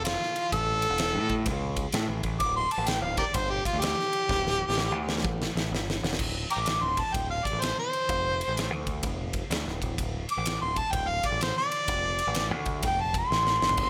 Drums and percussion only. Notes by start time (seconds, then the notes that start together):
0.05 snare, ride
0.23 snare
0.36 ride
0.52 kick, ride
0.82 ride
0.98 snare, ride
1.29 kick, ride
1.46 kick, ride
1.77 kick, ride
1.92 snare, ride
2.23 kick, ride
2.40 kick, ride
2.71 ride
2.87 snare, ride
3.17 kick, ride
3.34 kick, ride
3.65 kick, ride
3.82 snare, ride
4.00 snare
4.13 ride
4.29 kick, snare
4.47 snare
4.70 snare
4.78 snare
5.09 snare
5.18 snare
5.25 kick
5.42 snare
5.57 snare
5.75 snare
5.90 snare
6.04 snare
6.13 snare
6.19 kick, crash
6.50 ride
6.66 snare, ride
6.97 kick, ride
7.14 kick, ride
7.45 kick, ride
7.62 snare, ride
7.93 ride
8.09 kick, ride
8.41 ride
8.57 snare, ride
8.87 kick, ride
9.03 kick, ride
9.33 kick, ride
9.51 snare, ride
9.68 snare
9.82 kick, ride
9.98 kick, ride
10.29 ride
10.46 snare, ride
10.76 kick, ride
10.93 kick, ride
11.23 kick, ride
11.41 snare, ride
11.58 snare
11.72 ride
11.88 kick, ride
12.19 ride
12.35 snare, ride
12.66 kick, ride
12.83 kick, ride
13.14 kick, ride
13.32 snare
13.47 snare
13.62 snare
13.69 floor tom
13.77 kick, crash